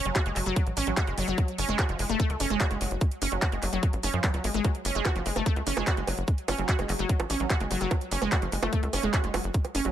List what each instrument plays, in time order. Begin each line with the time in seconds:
0.05 analog synth bass F#1, synth arpeggio sound F#3, closed hi-hat
0.16 synth arpeggio sound F#4, kick, clap, closed hi-hat
0.26 analog synth bass F#1, synth arpeggio sound G#3, closed hi-hat
0.36 analog synth bass F#1, synth arpeggio sound F#3, clap, open hi-hat
0.46 analog synth bass F#1, synth arpeggio sound F#3, closed hi-hat
0.56 synth arpeggio sound F#3, kick, closed hi-hat
0.67 analog synth bass A1, closed hi-hat
0.77 analog synth bass A1, synth arpeggio sound C#4, open hi-hat
0.87 analog synth bass A1, synth arpeggio sound F#3, closed hi-hat
0.97 synth arpeggio sound F#4, kick, clap, closed hi-hat
1.07 analog synth bass F#1, synth arpeggio sound G#3, closed hi-hat
1.18 analog synth bass F#1, synth arpeggio sound F#3, open hi-hat
1.28 analog synth bass F#1, synth arpeggio sound F#3, closed hi-hat
1.38 synth arpeggio sound F#3, kick, closed hi-hat
1.48 closed hi-hat
1.58 analog synth bass F#1, synth arpeggio sound C#4, open hi-hat
1.69 analog synth bass F#1, synth arpeggio sound G#3, closed hi-hat
1.79 synth arpeggio sound F#4, kick, clap, closed hi-hat
1.89 analog synth bass F#1, synth arpeggio sound F3, closed hi-hat
1.99 analog synth bass F#1, synth arpeggio sound G#3, open hi-hat
2.09 analog synth bass F#1, synth arpeggio sound A3, closed hi-hat
2.20 synth arpeggio sound A3, kick, closed hi-hat
2.30 analog synth bass C#2, synth arpeggio sound A3, closed hi-hat
2.40 analog synth bass F#1, synth arpeggio sound C#4, open hi-hat
2.50 analog synth bass F#1, synth arpeggio sound G#3, closed hi-hat
2.60 synth arpeggio sound F#4, kick, clap, closed hi-hat
2.71 analog synth bass F#1, synth arpeggio sound G#3, closed hi-hat
2.81 analog synth bass F#1, synth arpeggio sound F#3, open hi-hat
2.91 analog synth bass F#1, closed hi-hat
3.01 kick, closed hi-hat
3.11 closed hi-hat
3.22 analog synth bass F#1, synth arpeggio sound C#4, open hi-hat
3.32 analog synth bass F#1, synth arpeggio sound F#3, closed hi-hat
3.42 synth arpeggio sound F#4, kick, clap, closed hi-hat
3.52 analog synth bass F#1, synth arpeggio sound G#3, closed hi-hat
3.62 analog synth bass F#1, synth arpeggio sound F#3, clap, open hi-hat
3.73 analog synth bass F#1, synth arpeggio sound F#3, closed hi-hat
3.83 synth arpeggio sound F#3, kick, closed hi-hat
3.93 analog synth bass A1, closed hi-hat
4.03 analog synth bass F#1, synth arpeggio sound C#4, open hi-hat
4.14 analog synth bass F#2, synth arpeggio sound F3
4.24 synth arpeggio sound F#3, kick, clap, closed hi-hat
4.34 analog synth bass C#2, synth arpeggio sound F#3, closed hi-hat
4.44 analog synth bass G#1, synth arpeggio sound G#3, open hi-hat
4.54 analog synth bass G#1, synth arpeggio sound G#3, closed hi-hat
4.65 synth arpeggio sound F#3, kick, closed hi-hat, high bongo
4.75 closed hi-hat
4.85 analog synth bass F#1, synth arpeggio sound C#4, open hi-hat
4.95 analog synth bass F#1, synth arpeggio sound G#3, closed hi-hat
5.05 synth arpeggio sound F#4, kick, clap, closed hi-hat, high bongo
5.16 analog synth bass F#1, synth arpeggio sound F3, closed hi-hat
5.26 analog synth bass F#1, synth arpeggio sound G#3, open hi-hat
5.36 analog synth bass F#1, synth arpeggio sound A3, closed hi-hat, high bongo
5.46 synth arpeggio sound A3, kick, closed hi-hat
5.56 analog synth bass C#2, synth arpeggio sound A3, closed hi-hat
5.67 analog synth bass F#1, synth arpeggio sound C#4, open hi-hat
5.77 analog synth bass F#1, synth arpeggio sound G#3, high bongo
5.87 synth arpeggio sound F#4, kick, clap, closed hi-hat
5.97 analog synth bass F#1, synth arpeggio sound G#3, closed hi-hat
6.07 analog synth bass F#1, synth arpeggio sound F#3, open hi-hat, high bongo
6.18 analog synth bass F#1, closed hi-hat
6.28 kick, closed hi-hat
6.38 closed hi-hat
6.48 analog synth bass F#1, synth arpeggio sound C#4, open hi-hat, high bongo
6.58 analog synth bass F#1, synth arpeggio sound F#3, closed hi-hat
6.69 synth arpeggio sound F#4, kick, clap, closed hi-hat
6.79 analog synth bass F#1, synth arpeggio sound G#3, closed hi-hat, high bongo
6.89 analog synth bass F#1, synth arpeggio sound F#3, clap, open hi-hat
6.99 analog synth bass F#1, synth arpeggio sound F#3
7.09 synth arpeggio sound F#3, kick, closed hi-hat
7.20 analog synth bass A1, closed hi-hat, high bongo
7.30 analog synth bass A1, synth arpeggio sound C#4, open hi-hat
7.40 analog synth bass A1, synth arpeggio sound F#3, closed hi-hat
7.50 synth arpeggio sound F#4, kick, clap, closed hi-hat, high bongo
7.60 analog synth bass F#1, synth arpeggio sound G#3, closed hi-hat
7.71 analog synth bass F#1, synth arpeggio sound F#3, open hi-hat
7.81 analog synth bass F#1, synth arpeggio sound F#3, closed hi-hat
7.91 synth arpeggio sound F#3, kick, closed hi-hat, high bongo
8.01 closed hi-hat
8.11 analog synth bass F#1, synth arpeggio sound C#4, open hi-hat
8.22 analog synth bass F#1, synth arpeggio sound G#3, closed hi-hat, high bongo
8.32 synth arpeggio sound F#4, kick, clap, closed hi-hat
8.42 analog synth bass F#1, synth arpeggio sound F3, closed hi-hat
8.52 analog synth bass F#1, synth arpeggio sound G#3, open hi-hat
8.62 analog synth bass F#1, synth arpeggio sound A3, closed hi-hat, high bongo
8.73 synth arpeggio sound A3, kick, closed hi-hat
8.83 analog synth bass C#2, synth arpeggio sound A3, closed hi-hat
8.93 analog synth bass F#1, synth arpeggio sound C#4, open hi-hat, high bongo
9.03 analog synth bass F#1, synth arpeggio sound G#3, closed hi-hat
9.14 synth arpeggio sound F#4, kick, clap, closed hi-hat
9.24 analog synth bass F#1, synth arpeggio sound G#3, closed hi-hat
9.34 analog synth bass F#1, synth arpeggio sound F#3, open hi-hat, high bongo
9.44 analog synth bass F#1, closed hi-hat
9.54 kick, closed hi-hat
9.65 closed hi-hat, high bongo
9.75 analog synth bass F#1, synth arpeggio sound C#4, open hi-hat
9.85 analog synth bass F#1, synth arpeggio sound F#3, closed hi-hat